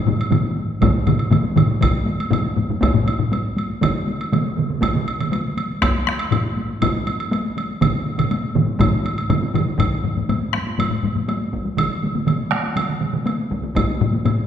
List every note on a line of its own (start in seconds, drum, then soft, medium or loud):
0.07 taiko low-mid loud
0.07 taiko mid medium
0.07 taiko high soft
0.19 taiko high soft
0.19 high woodblock soft
0.31 taiko low-mid medium
0.31 taiko mid medium
0.31 taiko high medium
0.31 high woodblock soft
0.44 taiko high soft
0.57 taiko high soft
0.70 taiko high soft
0.82 taiko loud
0.82 taiko low-mid loud
0.82 taiko mid medium
0.82 taiko high medium
0.82 high woodblock soft
0.95 taiko high soft
1.07 taiko low-mid loud
1.07 taiko mid loud
1.07 taiko high medium
1.07 high woodblock soft
1.19 taiko high soft
1.19 high woodblock soft
1.31 taiko low-mid loud
1.31 taiko mid medium
1.31 taiko high medium
1.31 high woodblock soft
1.44 taiko high medium
1.56 taiko low-mid loud
1.56 taiko mid loud
1.56 taiko high medium
1.56 high woodblock soft
1.69 taiko high soft
1.81 taiko loud
1.81 taiko low-mid medium
1.81 taiko high medium
1.81 high woodblock medium
1.93 taiko high soft
2.06 taiko high medium
2.19 taiko high soft
2.19 high woodblock soft
2.31 taiko low-mid loud
2.31 taiko high medium
2.31 high woodblock soft
2.44 taiko high soft
2.56 taiko low-mid medium
2.56 taiko high medium
2.69 taiko low-mid medium
2.69 taiko high soft
2.81 taiko loud
2.81 taiko high medium
2.81 high woodblock soft
2.94 taiko low-mid loud
2.94 taiko high soft
3.06 taiko high medium
3.06 high woodblock soft
3.19 taiko low-mid medium
3.19 taiko high soft
3.32 taiko high medium
3.32 high woodblock soft
3.57 taiko high soft
3.57 high woodblock soft
3.69 taiko high soft
3.81 taiko loud
3.81 taiko mid loud
3.81 taiko high medium
3.81 high woodblock medium
3.94 taiko high soft
4.07 taiko high soft
4.20 taiko high soft
4.20 high woodblock soft
4.32 taiko mid medium
4.32 taiko high medium
4.32 high woodblock soft
4.46 taiko high soft
4.57 taiko mid medium
4.57 taiko high medium
4.70 taiko mid medium
4.70 taiko high soft
4.82 taiko loud
4.82 taiko high medium
4.82 high woodblock medium
4.95 taiko mid loud
4.95 taiko high soft
5.08 high woodblock soft
5.20 taiko mid medium
5.20 taiko high soft
5.20 high woodblock soft
5.32 taiko high medium
5.32 high woodblock soft
5.57 taiko high soft
5.57 high woodblock soft
5.70 taiko high soft
5.82 taiko rim medium
5.82 taiko loud
5.82 taiko high medium
5.82 high woodblock medium
5.95 taiko high soft
6.07 taiko rim medium
6.07 taiko high medium
6.19 taiko high soft
6.19 high woodblock soft
6.31 taiko low-mid loud
6.31 taiko high medium
6.31 high woodblock soft
6.46 taiko high soft
6.57 taiko high medium
6.70 taiko high soft
6.82 taiko loud
6.82 taiko low-mid loud
6.82 taiko high medium
6.82 high woodblock medium
6.94 taiko high soft
7.07 taiko high medium
7.07 high woodblock soft
7.19 taiko high soft
7.19 high woodblock soft
7.32 taiko high medium
7.32 high woodblock soft
7.57 taiko high medium
7.57 high woodblock soft
7.69 taiko high soft
7.81 taiko medium
7.81 taiko low-mid medium
7.81 taiko mid loud
7.81 taiko high medium
7.81 high woodblock medium
7.93 taiko high soft
8.06 taiko high soft
8.18 taiko low-mid medium
8.18 taiko mid loud
8.18 taiko high soft
8.18 high woodblock soft
8.31 taiko high medium
8.31 high woodblock soft
8.43 taiko high soft
8.55 taiko low-mid loud
8.55 taiko mid loud
8.55 taiko high soft
8.67 taiko high soft
8.79 taiko loud
8.79 taiko low-mid loud
8.79 taiko mid medium
8.79 taiko high medium
8.79 high woodblock medium
8.93 taiko high soft
9.05 taiko high medium
9.05 high woodblock soft
9.18 taiko high soft
9.18 high woodblock soft
9.30 taiko low-mid loud
9.30 taiko mid loud
9.30 taiko high medium
9.30 high woodblock soft
9.43 taiko high medium
9.54 taiko low-mid loud
9.54 taiko mid loud
9.54 taiko high soft
9.54 high woodblock soft
9.67 taiko high soft
9.79 taiko medium
9.79 taiko low-mid medium
9.79 taiko high medium
9.79 high woodblock medium
10.04 taiko low-mid medium
10.04 taiko high soft
10.17 taiko low-mid medium
10.17 taiko high soft
10.29 taiko low-mid medium
10.29 taiko high medium
10.29 high woodblock soft
10.53 taiko rim medium
10.53 taiko high medium
10.67 taiko high soft
10.78 taiko low-mid medium
10.78 taiko high medium
10.78 high woodblock medium
10.90 taiko low-mid medium
11.03 taiko low-mid medium
11.03 taiko high medium
11.16 taiko low-mid medium
11.16 taiko high soft
11.28 taiko high medium
11.28 high woodblock soft
11.53 taiko medium
11.53 taiko high soft
11.65 taiko high soft
11.78 taiko medium
11.78 taiko mid medium
11.78 taiko high medium
11.78 high woodblock medium
12.02 taiko mid medium
12.02 taiko high soft
12.15 taiko mid medium
12.15 taiko high medium
12.27 taiko mid medium
12.27 taiko high medium
12.27 high woodblock soft
12.51 taiko rim medium
12.51 taiko high medium
12.63 taiko high soft
12.76 taiko mid medium
12.76 taiko high medium
12.76 high woodblock medium
12.89 taiko mid medium
13.01 taiko mid medium
13.01 taiko high medium
13.13 taiko mid medium
13.13 taiko high soft
13.26 taiko high medium
13.26 high woodblock soft
13.51 taiko medium
13.51 taiko high soft
13.64 taiko high medium
13.75 taiko medium
13.75 taiko low-mid medium
13.75 taiko high medium
13.75 high woodblock soft
14.01 taiko low-mid loud
14.01 taiko high medium
14.13 taiko high medium
14.25 taiko low-mid medium
14.25 taiko high medium
14.25 high woodblock soft